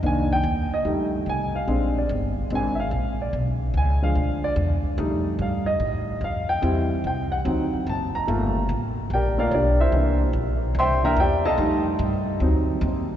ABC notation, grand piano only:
X:1
M:4/4
L:1/8
Q:"Swing" 1/4=146
K:Fmix
V:1 name="Grand piano"
_a g2 e z2 a f- | f d z2 _a [=ef]2 d | z2 ^g f2 d z2 | z2 f e3 f g- |
g2 g _g3 a b- | b2 z2 [GBdg] [Bdf] [DGB_d=d] [=EBc=e]- | [=EBc=e] z3 [cegc'] [Begb] [Gdeg] [A_efa]- | [Aefa] z6 z |]
V:2 name="Grand piano"
[E,B,D] z3 [G,A,E]3 z | [_A,CD] z3 [A,CD] z3 | z3 [F,^G,D]4- [F,G,D] | [G,A,E]3 z4 z |
[G,C=E] z3 [^F,C_E]4 | [A,B,F] z4 [A,B,F] z2 | [=E,B,D] z4 [E,B,D] z2 | [G,A,E]4 [^F,CE]3 z |]